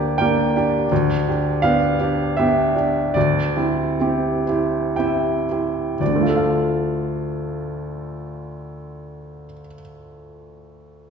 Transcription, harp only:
Already playing: D3 D4 A#4 D5
0.19 G5
0.55 D5
0.91 D3
1.28 D4
1.63 B4
1.99 D5
2.37 G5
2.75 D5
3.15 D3
3.57 C4
4.00 G4
4.47 C5
4.98 E5
5.49 C5
5.99 D3
6.06 A3
6.12 D4
6.20 F4
6.27 A4
6.34 F5

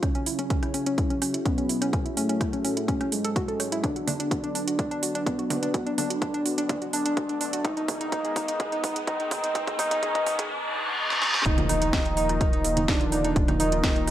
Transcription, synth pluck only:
0.03 C#4
0.15 C#4
0.27 E4
0.39 C#4
0.50 C#4
0.63 E4
0.74 C#4
0.87 C#4
0.98 E4
1.10 C#4
1.22 C#4
1.34 E4
1.46 C#4
1.58 C#4
1.69 E4
1.82 C#4
1.93 C#4
2.06 E4
2.17 C#4
2.29 C#4
2.41 E4
2.53 C#4
2.65 C#4
2.77 E4
2.88 C#4
3.01 C#4
3.12 A4
3.25 A4
3.36 F#4
3.48 A4
3.60 C#5
3.72 E4
3.84 D4
3.96 F#4
4.07 D4
4.20 D4
4.31 F#4
4.44 D4
4.55 D4
4.67 F#4
4.79 D4
4.91 D4
5.03 F#4
5.15 D4
5.26 D4
5.39 F#4
5.50 D4
5.63 D4
5.74 F#4
5.86 D4
5.98 D4
6.10 F#4
6.22 D4
6.34 D4
6.46 F#4
6.58 D4
6.69 D4
6.82 F#4
6.93 D4
7.06 D4
7.17 F#4
7.29 D4
7.41 D4
7.53 F#4
7.65 D#4
7.77 D#4
7.89 G#4
8.01 D#4
8.12 D#4
8.25 G#4
8.36 D#4
8.49 D#4
8.60 G#4
8.72 D#4
8.84 D#4
8.96 G#4
9.07 D#4
9.20 D#4
9.31 G#4
9.44 D#4
9.55 D#4
9.68 G#4
9.79 D#4
9.91 D#4
10.03 G#4
10.15 D#4
10.27 D#4
10.39 G#4
11.46 D#4
11.58 F4
11.69 D#4
11.82 D#4
12.06 D#4
12.17 D#4
12.29 F4
12.41 D#4
12.53 D#4
12.65 F4
12.77 D#4
12.88 D#4
13.01 F4
13.12 D#4
13.25 D#4
13.36 F4
13.48 D#4
13.60 D#4
13.72 F4
13.84 D#4
13.96 D#4
14.07 F4

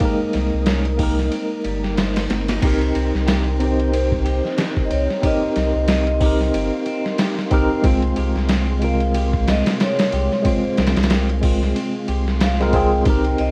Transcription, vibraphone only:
3.29 A#4
3.94 C5
4.85 D#5
4.91 C#5
5.24 D#5
5.89 D#5
8.83 F5
9.49 D#5
9.82 C#5
10.47 C5
10.81 A#4
12.43 F5
12.75 G5
13.40 D#5

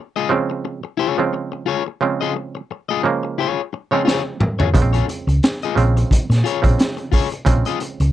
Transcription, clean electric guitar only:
0.16 F4 G#4 D#5
0.31 muted clean electric guitar stroke
0.50 muted clean electric guitar stroke
0.65 muted clean electric guitar stroke
0.83 muted clean electric guitar stroke
0.97 F4 G#4 C#5
1.18 muted clean electric guitar stroke
1.33 muted clean electric guitar stroke
1.52 muted clean electric guitar stroke
1.66 F4 G#4 C#5
1.86 muted clean electric guitar stroke
2.02 muted clean electric guitar stroke
2.21 F4 G#4 D#5
2.36 muted clean electric guitar stroke
2.55 muted clean electric guitar stroke
2.71 muted clean electric guitar stroke
2.89 F4 G#4 D#5
3.04 muted clean electric guitar stroke
3.23 muted clean electric guitar stroke
3.38 F4 G#4 C#5
3.73 muted clean electric guitar stroke
3.92 F4 G#4 C#5
4.05 F4 G#4 C#5
4.40 muted clean electric guitar stroke
4.59 F4 G#4 C#5
4.74 muted clean electric guitar stroke
4.93 F4 G#4 C#5
5.08 muted clean electric guitar stroke
5.28 muted clean electric guitar stroke
5.44 muted clean electric guitar stroke
5.63 F4 G#4 D#5
5.78 muted clean electric guitar stroke
5.97 muted clean electric guitar stroke
6.12 muted clean electric guitar stroke
6.30 muted clean electric guitar stroke
6.44 F4 G#4 C#5
6.63 muted clean electric guitar stroke
6.79 muted clean electric guitar stroke
6.97 muted clean electric guitar stroke
7.12 F4 G#4 C#5
7.32 muted clean electric guitar stroke
7.48 muted clean electric guitar stroke
7.66 F4 G#4 D#5
7.81 muted clean electric guitar stroke
8.01 muted clean electric guitar stroke

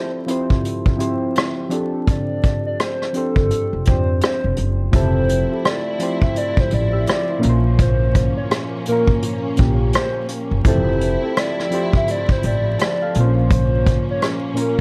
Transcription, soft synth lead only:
Already playing: C5
2.10 D5
2.66 D5
2.81 C5
3.17 A4
3.88 C5
4.24 C5
4.95 C5
5.67 D5
6.23 E5
6.37 D5
6.60 C5
6.74 D5
7.10 D5
7.81 C5
8.37 C#5
8.88 A#4
9.95 C5
10.67 C5
11.39 D5
11.97 E5
12.11 D5
12.32 C5
12.47 D5
12.83 D5
13.53 C5
14.11 C#5
14.61 A#4

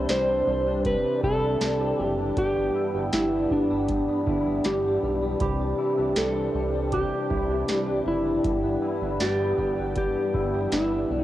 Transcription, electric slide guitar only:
0.10 C5
0.86 B4
1.24 A4
2.05 G4
2.38 G4
3.14 E4
3.52 D4
4.66 G4
5.42 G4
6.17 A4
6.94 G4
8.08 E4
9.22 G4
9.98 G4
10.73 E4

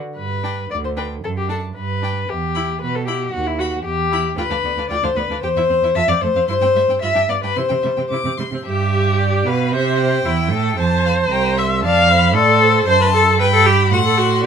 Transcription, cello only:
0.17 G2
0.71 D2
1.24 F#2
1.76 G2
2.29 E2
2.81 B2
3.33 D#2
3.85 E2
4.37 D2
4.51 D2
4.64 D2
4.77 D2
4.90 D2
5.04 D2
5.16 D2
5.30 D2
5.43 E2
5.56 E2
5.69 E2
5.82 E2
5.95 F2
6.08 F2
6.21 F2
6.34 F2
6.48 G2
6.61 G2
6.74 G2
6.88 G2
7.02 G2
7.15 G2
7.29 G2
7.43 G2
7.57 C3
7.70 C3
7.84 C3
7.98 C3
8.11 C3
8.24 C3
8.38 C3
8.51 C3
8.65 G2
9.46 B2
9.72 C3
10.25 E2
10.51 A2
10.78 F2
11.30 C2
11.82 F2
12.34 A2
12.87 F#2
13.39 G2
13.91 A2

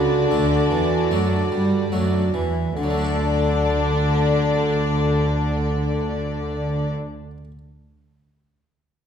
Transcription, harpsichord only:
Already playing: C#3
0.31 D3 A3 D4
0.71 E3
1.11 F#3 A3 D4
1.52 G3
1.92 F#3 A3 D4
2.34 E3
2.77 D3
2.83 F#3
2.90 A3
2.97 D4
3.04 A4

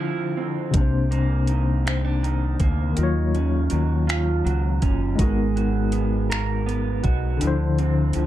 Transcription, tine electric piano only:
Already playing: D3 F3 D4 E4 C5
0.71 C3 A#3
0.76 C4 D4
0.81 C5
2.92 D#3 A#3
2.98 F#3 F4
3.03 C#5
5.15 G#3 D#4
5.21 F#4 A#4
5.26 B3
7.37 D3 D4
7.42 F3 E4
7.47 C5

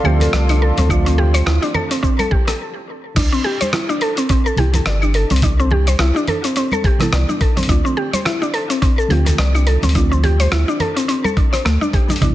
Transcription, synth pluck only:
0.05 G4
0.21 A4
0.33 D5
0.50 D4
0.62 A4
0.78 C4
0.90 D4
1.06 C4
1.18 G4
1.34 C5
1.46 E4
1.62 D4
1.74 A4
1.91 C4
2.03 C4
2.19 A4
2.31 G4
2.47 A4
3.16 D4
3.32 C4
3.44 G4
3.61 C5
3.73 E4
3.89 D4
4.02 A4
4.18 C4
4.30 C4
4.46 A4
4.58 G4
4.75 A4
4.87 D5
5.03 D4
5.15 A4
5.31 C4
5.43 D4
5.60 C4
5.71 G4
5.88 C5
6.00 E4
6.16 D4
6.28 A4
6.44 C4
6.57 C4
6.73 A4
6.85 G4
7.01 A4
7.13 D5
7.29 D4
7.41 A4
7.57 C4
7.69 D4
7.85 C4
7.97 G4
8.13 C5
8.25 E4
8.42 D4
8.54 A4
8.70 C4
8.82 C4
8.98 A4
9.10 G4
9.26 A4
9.38 D5
9.55 D4
9.67 A4
9.83 C4
9.95 D4
10.12 C4
10.24 G4
10.40 C5
10.52 E4
10.68 D4
10.80 A4
10.96 C4
11.08 C4
11.24 A4
11.37 D4
11.53 C5
11.65 A3
11.81 D4
11.94 G4
12.10 D4
12.22 D4

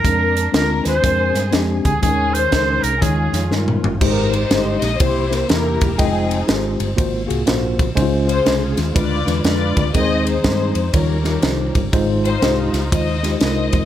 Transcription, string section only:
Already playing: D4 A#4
0.54 A#4
0.86 G#4 C5
1.84 G#4
2.02 C#4 G#4
2.32 G#4 C5
2.83 A#4
3.01 C#4 F4 G#4
4.02 D#4 G4 A#4
4.33 D#4 G4 C5
4.82 D#5
4.99 E4 G4 C5
5.50 E4 G4 A#4
5.98 C4 D#4 G#4
8.27 F4 G#4 C5
8.95 F4 B4 D5
9.45 F4 B4 D5
9.95 G#4 C5 D#5
10.25 D#4 G#4 C5
10.93 C#4 G4 A#4
12.24 D#4 F4 C5
12.92 C5 D#5
13.41 C5 D#5

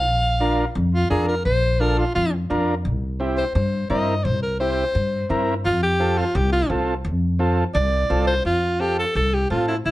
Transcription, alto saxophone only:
Already playing: F5
0.93 F4
1.10 G#4
1.28 A#4
1.45 C5
1.80 A#4
1.98 F4
2.15 F4
3.37 C5
3.55 C5
3.90 D#5
4.24 C5
4.43 A#4
4.60 C5
5.65 F4
5.83 G4
6.18 F4
6.35 G4
6.52 F4
7.74 D5
8.27 C5
8.46 F4
8.80 G4
8.99 A4
9.16 A4
9.34 G4
9.51 F4
9.68 E4
9.86 E4

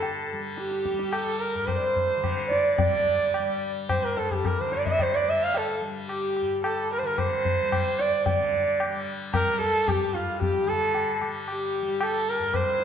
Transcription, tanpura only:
Already playing: G2 D3 G3
0.33 G3
0.93 G3
1.55 G2
2.16 D3
2.77 G3
3.39 G3
3.99 G2
4.60 D3
5.20 G3
5.82 G3
6.41 G2
7.02 D3
7.62 G3
8.28 D3
8.87 G3
9.46 G3
10.04 G2
10.63 D3
11.22 G3
11.82 G3
12.39 G2

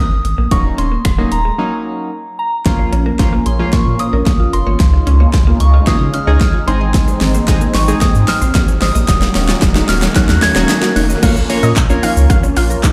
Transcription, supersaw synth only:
2.66 A#3 C#4 F4
4.80 C#3 G#3 D#4
6.68 C4
9.09 D#3 A#3 C#4 F#4
11.23 A#3 C#4 F4

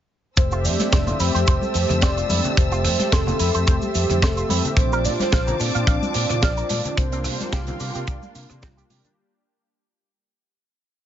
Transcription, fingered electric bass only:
0.37 F1
0.65 F2
0.80 muted fingered electric bass stroke
0.93 F1
1.20 F2
1.35 F2
1.48 F1
1.75 F2
1.90 F2
2.02 F1
2.30 F2
2.57 F1
2.85 F2
3.00 muted fingered electric bass stroke
3.12 F1
3.40 F2
3.55 F2
3.68 F1
3.95 F2
4.10 F2
4.22 F1
4.50 F2
4.77 A#1
5.05 A#2
5.20 muted fingered electric bass stroke
5.33 A#1
5.60 A#2
5.75 A#2
5.87 A#1
6.15 A#2
6.30 A#2
6.43 A#1
6.70 A#2
6.98 C2
7.25 C3
7.40 muted fingered electric bass stroke
7.53 C2
7.80 C3
7.95 C3
8.08 C2
8.35 C3
8.50 C3
8.63 C2
8.91 C3

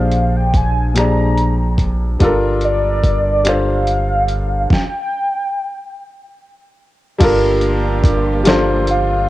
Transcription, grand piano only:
Already playing: A#2 F3 D4 G4 G#4 C5
0.94 A#2 F3 D4 G4 G#4
0.99 D5
2.19 G3 D4 F4 A4
2.24 A#4
3.44 G3 D4 F4 A4
3.49 C5
7.18 G3 D4 F4 A4
7.24 A#4
8.44 G3 D4 F4 A4
8.48 C5

